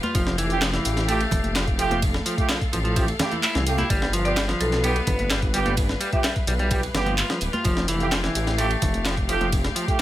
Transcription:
Already playing: string section G3 B4 F5
0.03 clean electric guitar F4, closed hi-hat, high conga
0.15 detuned saw bass F1, clean electric guitar F3, string section A3 G4, kick, closed hi-hat, ride
0.27 snare
0.38 clean electric guitar E3, closed hi-hat, ride
0.50 brass ensemble A3 F4 G4, closed hi-hat
0.61 clean electric guitar F3, snare, clap, closed hi-hat, ride
0.73 clean electric guitar E3, snare, closed hi-hat
0.85 detuned saw bass A1, closed hi-hat, ride
0.97 snare, closed hi-hat
1.08 clean electric guitar A3, brass ensemble A3 F4 G4, closed hi-hat, ride
1.21 ride
1.31 detuned saw bass F1, kick, closed hi-hat, ride, low conga
1.44 closed hi-hat, high conga
1.55 clean electric guitar F3, snare, clap, closed hi-hat, ride
1.67 kick, closed hi-hat
1.79 clean electric guitar F3, brass ensemble A3 F4 G4, closed hi-hat, ride
1.91 clean electric guitar F3, closed hi-hat, high conga
2.02 string section A4, kick, closed hi-hat, ride
2.14 snare
2.26 clean electric guitar F3, closed hi-hat, ride
2.38 brass ensemble A3 F4 G4, kick, closed hi-hat
2.49 clean electric guitar F3, snare, clap, closed hi-hat, ride
2.61 kick, closed hi-hat
2.73 detuned saw bass A1, clean electric guitar F3, closed hi-hat, ride
2.84 clean electric guitar F3, closed hi-hat
2.96 clean electric guitar F3, brass ensemble A3 F4 G4, kick, closed hi-hat, ride
3.08 ride
3.19 brass ensemble A3 F4 G4, snare, closed hi-hat, ride, low conga
3.31 clean electric guitar E3, closed hi-hat, high conga
3.43 clean electric guitar E4, clap, closed hi-hat, ride
3.55 detuned saw bass C2, clean electric guitar E3, snare, closed hi-hat
3.67 brass ensemble A3 F4 G4, closed hi-hat, ride
3.78 clean electric guitar E4, closed hi-hat, high conga
3.90 detuned saw bass G1, clean electric guitar G3, string section G3 B4, kick, closed hi-hat, ride
4.02 snare
4.13 clean electric guitar F3, closed hi-hat, ride
4.25 brass ensemble B3 F4 G4, marimba D5, closed hi-hat
4.36 clean electric guitar G3, snare, clap, closed hi-hat, ride
4.48 clean electric guitar F3, snare, closed hi-hat
4.60 detuned saw bass B1, marimba A4, closed hi-hat, ride
4.72 marimba A4, snare, closed hi-hat
4.84 clean electric guitar B3, brass ensemble B3 F4 G4, closed hi-hat, ride
4.96 ride
5.07 detuned saw bass G1, marimba B4, kick, closed hi-hat, ride, low conga
5.19 marimba B4, closed hi-hat, high conga
5.30 clean electric guitar G3, snare, clap, closed hi-hat, ride
5.42 kick, closed hi-hat
5.54 clean electric guitar G3, brass ensemble B3 F4 G4, closed hi-hat, ride
5.66 clean electric guitar G3, closed hi-hat, high conga
5.77 kick, closed hi-hat, ride
5.89 snare
6.00 clean electric guitar G3, closed hi-hat, ride
6.13 brass ensemble B3 F4 G4, marimba E5, kick, closed hi-hat
6.24 clean electric guitar G3, marimba E5, snare, clap, closed hi-hat, ride
6.36 kick, closed hi-hat
6.47 detuned saw bass B1, clean electric guitar G3, closed hi-hat, ride
6.59 clean electric guitar G3, closed hi-hat
6.71 clean electric guitar G3, brass ensemble B3 F4 G4, kick, closed hi-hat, ride
6.83 ride
6.94 detuned saw bass G1, brass ensemble B3 F4 G4, snare, closed hi-hat, ride, low conga
7.06 clean electric guitar F3, closed hi-hat, high conga
7.18 clean electric guitar F4, clap, closed hi-hat, ride
7.30 clean electric guitar F3, snare, closed hi-hat
7.41 detuned saw bass D1, closed hi-hat, ride
7.53 clean electric guitar F4, closed hi-hat, high conga
7.64 detuned saw bass F1, clean electric guitar F3, string section A3 G4 F5, kick, closed hi-hat, ride
7.77 snare
7.88 clean electric guitar E3, closed hi-hat, ride
8.00 brass ensemble A3 F4 G4, closed hi-hat
8.11 clean electric guitar F3, snare, clap, closed hi-hat, ride
8.23 clean electric guitar E3, snare, closed hi-hat
8.35 detuned saw bass A1, closed hi-hat, ride
8.47 snare, closed hi-hat
8.58 clean electric guitar A3, brass ensemble A3 F4 G4, closed hi-hat, ride
8.71 ride
8.82 detuned saw bass F1, kick, closed hi-hat, ride, low conga
8.94 closed hi-hat, high conga
9.05 clean electric guitar F3, snare, clap, closed hi-hat, ride
9.17 kick, closed hi-hat
9.29 clean electric guitar F3, brass ensemble A3 F4 G4, closed hi-hat, ride
9.41 clean electric guitar F3, closed hi-hat, high conga
9.52 kick, closed hi-hat, ride
9.64 snare, closed hi-hat
9.76 clean electric guitar F3, closed hi-hat, ride
9.88 brass ensemble A3 F4 G4, kick, closed hi-hat

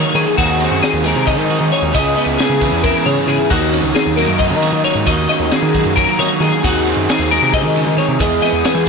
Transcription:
Already playing: clean electric guitar D#3 F#3 D#4 F#4 C#5, overdriven electric guitar D#3 F#3 A#3 D#4
0.15 picked electric bass D#3, clean electric guitar C#4 G#4, ride
0.27 clean electric guitar D#4
0.38 picked electric bass D#2, overdriven electric guitar D#3 F#3 C4 D#4 G#4, clean electric guitar D#3 F#4, kick, ride
0.60 clean electric guitar C4, ride
0.71 picked electric bass F#2
0.82 clean electric guitar G#4, snare, ride
0.94 picked electric bass D#2
1.04 overdriven electric guitar D#3 F#3 C4 D#4 G#4, clean electric guitar G#3 A#4, snare, ride
1.16 picked electric bass C3
1.27 clean electric guitar C#4 D#5, kick, snare, ride
1.38 picked electric bass D#3, clean electric guitar D#4
1.50 clean electric guitar D#3 F#4, ride
1.61 picked electric bass D#3
1.72 clean electric guitar D#4 C#5, ride
1.82 picked electric bass D#2
1.93 picked electric bass C#2, overdriven electric guitar C#3 G#3 C#4 E4 G#4, clean electric guitar C#3 G#4 D#5, kick, ride
2.16 clean electric guitar B3 D#5, ride
2.26 picked electric bass C#2
2.38 clean electric guitar G#4, snare, ride
2.50 picked electric bass C#3
2.61 overdriven electric guitar C#3 G#3 C#4 E4 G#4, clean electric guitar E3, kick, snare, ride
2.72 picked electric bass E2
2.84 clean electric guitar E4 A#4, kick, snare, ride
3.06 clean electric guitar G#2 G#4 C#5, picked electric bass C#3, ride
3.28 picked electric bass C#3, clean electric guitar E4 G#4, ride
3.50 picked electric bass D#2, clean electric guitar D#3 F#4, overdriven electric guitar D#3 F#3 A#3 D#4, kick, crash
3.73 clean electric guitar C#4, snare, ride
3.83 picked electric bass C#2
3.95 clean electric guitar G#4, snare, ride
4.06 picked electric bass D#2
4.16 overdriven electric guitar D#3 F#3 A#3 D#4, clean electric guitar F#3 A#4, snare, ride
4.28 picked electric bass F#2
4.39 clean electric guitar D#4 D#5, kick, snare, ride
4.50 picked electric bass D#3
4.62 clean electric guitar D#3 F#4, snare, ride
4.73 picked electric bass D#3
4.84 clean electric guitar D#4 C#5, ride
4.95 picked electric bass G#2
5.06 picked electric bass D#2, clean electric guitar D#3 F#4 D#5, overdriven electric guitar D#3 F#3 A#3 D#4, kick, ride
5.29 clean electric guitar C#4 D#5, ride
5.40 picked electric bass D#2
5.51 clean electric guitar G#4, snare, ride
5.62 picked electric bass D#3
5.74 overdriven electric guitar D#3 F#3 A#3 D#4, clean electric guitar F#3, kick, ride
5.85 picked electric bass F#2
5.96 clean electric guitar C#4 A#4, kick, ride
6.09 clean electric guitar D#4
6.19 picked electric bass D#3, clean electric guitar D#3 F#4 C#5, snare, ride
6.40 picked electric bass D#3, clean electric guitar D#4 G#4, ride
6.63 picked electric bass D#2, overdriven electric guitar D#3 F#3 C4 D#4 G#4, clean electric guitar D#3 F#4, kick, ride
6.87 clean electric guitar C4, ride
6.97 picked electric bass F#2
7.09 clean electric guitar G#4, snare, ride
7.19 picked electric bass D#2
7.30 overdriven electric guitar D#3 F#3 C4 D#4 G#4, clean electric guitar G#3 A#4, ride
7.42 picked electric bass C3
7.54 clean electric guitar C3 D#5, kick, snare, ride
7.65 picked electric bass D#3
7.76 clean electric guitar C#3, ride
7.87 picked electric bass D#3
7.97 clean electric guitar D#3 C#5, snare, ride
8.09 picked electric bass C3
8.19 picked electric bass E2, clean electric guitar E2 G#4 D#5, overdriven electric guitar E3 G#3 B3 E4 G#4, kick, ride
8.42 clean electric guitar B3 D#5, snare, ride
8.53 picked electric bass E2
8.65 clean electric guitar G#4, snare, ride
8.75 picked electric bass E3

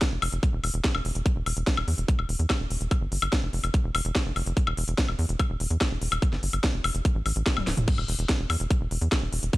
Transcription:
0.01 kick, snare, closed hi-hat
0.12 analog synth bass F1
0.22 analog synth bass F1, open hi-hat, high woodblock
0.33 analog synth bass F1, closed hi-hat
0.43 kick, closed hi-hat
0.53 analog synth bass E1
0.64 analog synth bass E1, open hi-hat, high woodblock
0.74 analog synth bass E1, closed hi-hat
0.84 kick, snare, closed hi-hat
0.95 analog synth bass E1, high woodblock
1.05 analog synth bass E1, open hi-hat
1.15 analog synth bass E1, closed hi-hat
1.26 kick, closed hi-hat
1.36 analog synth bass E1
1.46 analog synth bass E1, open hi-hat, high woodblock
1.57 analog synth bass E1, closed hi-hat
1.67 kick, snare, closed hi-hat
1.77 analog synth bass E1, high woodblock
1.88 analog synth bass E2, open hi-hat
1.98 analog synth bass E1, closed hi-hat
2.08 kick, closed hi-hat
2.19 analog synth bass E1, high woodblock
2.29 analog synth bass E1, open hi-hat
2.39 analog synth bass E2, closed hi-hat
2.50 kick, snare, closed hi-hat, high woodblock
2.60 analog synth bass E1
2.70 analog synth bass E1, open hi-hat
2.81 analog synth bass E1, closed hi-hat
2.91 kick, closed hi-hat, high woodblock
3.01 analog synth bass G1
3.12 analog synth bass G1, open hi-hat
3.22 analog synth bass G1, closed hi-hat, high woodblock
3.33 kick, snare, closed hi-hat
3.43 analog synth bass F1
3.53 analog synth bass F1, open hi-hat
3.64 analog synth bass F1, closed hi-hat, high woodblock
3.74 kick, closed hi-hat
3.84 analog synth bass E1
3.95 analog synth bass E1, open hi-hat, high woodblock
4.05 analog synth bass E1, closed hi-hat
4.15 kick, snare, closed hi-hat
4.26 analog synth bass F1
4.36 analog synth bass F1, open hi-hat, high woodblock
4.46 analog synth bass F1, closed hi-hat
4.57 kick, closed hi-hat
4.67 analog synth bass E1, high woodblock
4.77 analog synth bass E1, open hi-hat
4.88 analog synth bass E1, closed hi-hat
4.98 kick, snare, closed hi-hat
5.08 analog synth bass E1, high woodblock
5.19 analog synth bass E2, open hi-hat
5.29 analog synth bass E1, closed hi-hat
5.39 kick, closed hi-hat, high woodblock
5.50 analog synth bass E1
5.60 analog synth bass E1, open hi-hat
5.71 analog synth bass E2, closed hi-hat
5.81 kick, snare, closed hi-hat, high woodblock
5.91 analog synth bass E1
6.02 analog synth bass E1, open hi-hat
6.12 analog synth bass E1, closed hi-hat, high woodblock
6.22 kick, closed hi-hat
6.33 analog synth bass G1, snare
6.43 analog synth bass G1, open hi-hat
6.53 analog synth bass G1, closed hi-hat, high woodblock
6.64 kick, snare, closed hi-hat
6.74 analog synth bass F1
6.84 analog synth bass F1, open hi-hat, high woodblock
6.95 analog synth bass F1, closed hi-hat
7.05 kick, closed hi-hat
7.15 analog synth bass A1
7.26 analog synth bass A1, open hi-hat, high woodblock
7.36 analog synth bass A1, closed hi-hat
7.46 kick, snare, closed hi-hat
7.57 analog synth bass D1, high tom, high woodblock
7.67 analog synth bass D1, snare, open hi-hat
7.77 analog synth bass D1, closed hi-hat, mid tom
7.88 kick, closed hi-hat, crash
7.98 analog synth bass E1, high woodblock
8.08 analog synth bass E1, open hi-hat
8.19 analog synth bass E1, closed hi-hat
8.29 kick, snare, closed hi-hat
8.40 analog synth bass E1
8.50 analog synth bass E2, open hi-hat, high woodblock
8.60 analog synth bass E1, closed hi-hat
8.70 kick, closed hi-hat
8.81 analog synth bass E1
8.91 analog synth bass E1, open hi-hat
9.01 analog synth bass E2, closed hi-hat
9.12 kick, snare, closed hi-hat, high woodblock
9.22 analog synth bass E1
9.33 analog synth bass E1, open hi-hat
9.43 analog synth bass E1, closed hi-hat
9.53 kick, closed hi-hat

